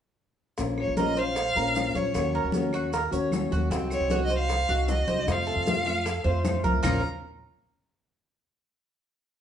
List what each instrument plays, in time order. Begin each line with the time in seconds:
0.57 upright bass A#1, nylon-string guitar F3 A#3 C#4 F4 C5, high bongo, high conga, maracas
0.77 violin C#5, high bongo, high conga, claves
0.88 upright bass A#1
0.97 nylon-string guitar F3 A#3 C#4 F4 C5, cuban tres A#4, violin D#5, high bongo, high conga, maracas
1.16 nylon-string guitar C#4 F4 C5, cuban tres C5, violin F5, high conga, maracas
1.35 muted nylon-string guitar stroke, high bongo, high conga, claves, maracas
1.55 upright bass A#1, nylon-string guitar A#3 C#4 F4 C5, cuban tres A#4, high bongo, high conga, maracas
1.75 nylon-string guitar A#3 C#4 F4 C5, high bongo, low bongo, high conga, maracas
1.94 upright bass A#1, nylon-string guitar C#4 F4 C5, cuban tres C#5, violin C#5, high bongo, high conga, maracas
2.13 upright bass D#2, nylon-string guitar D#3 A#3 C#4 F#4, high bongo, high conga, claves, maracas
2.33 cuban tres A#4, high bongo, high conga
2.44 upright bass D#2
2.52 nylon-string guitar D#3 A#3 C#4 F#4, high bongo, high conga, maracas
2.72 nylon-string guitar A#3 C#4 F#4, cuban tres F#4, claves, maracas
2.92 cuban tres A#4, muted nylon-string guitar stroke, high bongo, high conga, maracas
3.11 upright bass D#2, nylon-string guitar A#3 C#4 F#4, cuban tres C#5, high bongo, high conga, maracas
3.31 nylon-string guitar D#3 A#3 C#4 F#4, high bongo, low bongo, high conga, claves, maracas
3.51 upright bass D#2, nylon-string guitar A#3 C#4 F#4, cuban tres F#4, high bongo, high conga, maracas
3.70 upright bass C2, nylon-string guitar C4 D#4 F#4, cuban tres C4, high bongo, high conga, maracas
3.90 violin C#5, high bongo, high conga, claves, maracas
4.00 upright bass C2
4.10 nylon-string guitar C4 D#4 F#4, cuban tres F#4, high bongo, high conga, maracas
4.25 violin D#5
4.30 nylon-string guitar D#4 F#4, cuban tres C5, high conga, maracas
4.38 violin F5
4.49 muted nylon-string guitar stroke, high bongo, high conga, claves, maracas
4.69 upright bass C2, nylon-string guitar D#4 F#4, cuban tres F#4, high bongo, high conga
4.88 nylon-string guitar C4 D#4 F#4, violin D#5, high bongo, low bongo, high conga, maracas
5.07 upright bass C2, nylon-string guitar D#4 F#4, cuban tres C5, high bongo, high conga, maracas
5.27 upright bass F2, nylon-string guitar C3 F3 A3 C4 F4, high bongo, high conga, claves, maracas
5.31 violin F5
5.47 cuban tres A4, high bongo, high conga
5.56 upright bass F2
5.66 nylon-string guitar C3 F3 A3 C4 F4, high bongo, high conga, maracas
5.86 nylon-string guitar A3 C4 F4, cuban tres F4, claves, maracas
6.06 cuban tres A4, muted nylon-string guitar stroke, high bongo, high conga, maracas
6.24 upright bass F2, nylon-string guitar F3 A3 C4 F4, cuban tres C5, high bongo, high conga
6.45 nylon-string guitar F3 A3 C4 F4, high bongo, low bongo, high conga, claves, maracas
6.64 upright bass C2, nylon-string guitar A3 C4 F4, cuban tres A#4, high bongo, high conga, maracas
6.83 upright bass A#1, nylon-string guitar A#2 F3 A#3 C#4 F4 C5, cuban tres A#3 F4 A#4, violin A#5, low bongo, low conga, claves, maracas